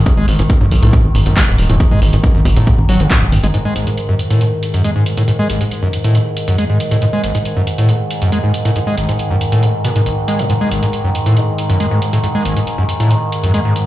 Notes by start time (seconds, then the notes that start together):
Already playing: G#2 D#3
0.06 G#2, kick, closed hi-hat, mid tom
0.17 G#1 G#3
0.28 G#1, open hi-hat
0.39 G#1 G#2, closed hi-hat
0.50 kick, closed hi-hat
0.61 B1 F#2, mid tom
0.71 B1, open hi-hat
0.83 B1 A2, closed hi-hat
0.93 G#2, kick, closed hi-hat
1.04 G#1
1.15 G#1, mid tom, open hi-hat
1.26 G#1 F#2, closed hi-hat
1.37 G#3, kick, clap, closed hi-hat
1.48 D#1 G#2
1.58 D#1, open hi-hat
1.70 D#1 A2, closed hi-hat, mid tom
1.80 G#2, kick, closed hi-hat
1.91 G#2 G#3
2.02 G#1, open hi-hat
2.13 G#1 G#2, closed hi-hat
2.24 kick, closed hi-hat, mid tom
2.35 G#1 F#2
2.45 G#1, kick, open hi-hat
2.57 G#1 A2, closed hi-hat
2.67 G#2, kick, closed hi-hat
2.78 G#1, mid tom
2.89 G#1 F#3, open hi-hat
3.00 G#1 C#3, closed hi-hat
3.11 G#2, kick, clap, closed hi-hat
3.22 F#1 G#2
3.32 G#1, mid tom, open hi-hat
3.43 G#1 G#3, closed hi-hat
3.54 G#2 D#3, closed hi-hat
3.65 G#3
3.76 G#1, closed hi-hat
3.87 G#2, closed hi-hat
3.97 closed hi-hat
4.09 F#2
4.19 closed hi-hat
4.30 A2, closed hi-hat
4.41 G#2, closed hi-hat
4.63 closed hi-hat
4.74 F#2, closed hi-hat
4.84 G#3, closed hi-hat
4.96 G#2
5.06 closed hi-hat
5.17 A2, closed hi-hat
5.28 G#2, closed hi-hat
5.39 G#3
5.50 G#1, closed hi-hat
5.61 G#2, closed hi-hat
5.71 closed hi-hat
5.83 F#2
5.93 closed hi-hat
6.04 A2, closed hi-hat
6.15 G#2, closed hi-hat
6.37 closed hi-hat
6.48 F#2, closed hi-hat
6.58 G#3, closed hi-hat
6.70 G#2
6.80 closed hi-hat
6.91 A2, closed hi-hat
7.02 G#2, closed hi-hat
7.13 G#3
7.24 G#1, closed hi-hat
7.35 G#2, closed hi-hat
7.45 closed hi-hat
7.57 F#2
7.67 closed hi-hat
7.78 A2, closed hi-hat
7.89 G#2, closed hi-hat
8.11 closed hi-hat
8.22 F#2, closed hi-hat
8.32 G#3, closed hi-hat
8.44 G#2
8.54 closed hi-hat
8.65 A2, closed hi-hat
8.76 G#2, closed hi-hat
8.87 G#3
8.98 G#1, closed hi-hat
9.09 G#2, closed hi-hat
9.19 closed hi-hat
9.30 F#2
9.41 closed hi-hat
9.52 A2, closed hi-hat
9.63 G#2, closed hi-hat
9.84 B2, closed hi-hat
9.96 G#2, closed hi-hat
10.06 G#1, closed hi-hat
10.28 G#3, closed hi-hat
10.39 G#2, closed hi-hat
10.50 G#2, closed hi-hat
10.61 G#3
10.71 G#1, closed hi-hat
10.83 G#2, closed hi-hat
10.93 closed hi-hat
11.04 F#2
11.15 closed hi-hat
11.26 A2, closed hi-hat
11.37 G#2, closed hi-hat
11.58 closed hi-hat
11.70 F#2, closed hi-hat
11.80 G#3, closed hi-hat
11.91 G#2
12.02 closed hi-hat
12.13 A2, closed hi-hat
12.24 G#2, closed hi-hat
12.35 G#3
12.45 G#1, closed hi-hat
12.57 G#2, closed hi-hat
12.67 closed hi-hat
12.78 F#2
12.89 closed hi-hat
13.00 A2, closed hi-hat
13.11 G#2, closed hi-hat
13.32 closed hi-hat
13.43 F#2, closed hi-hat
13.54 G#3, closed hi-hat
13.65 G#2
13.76 closed hi-hat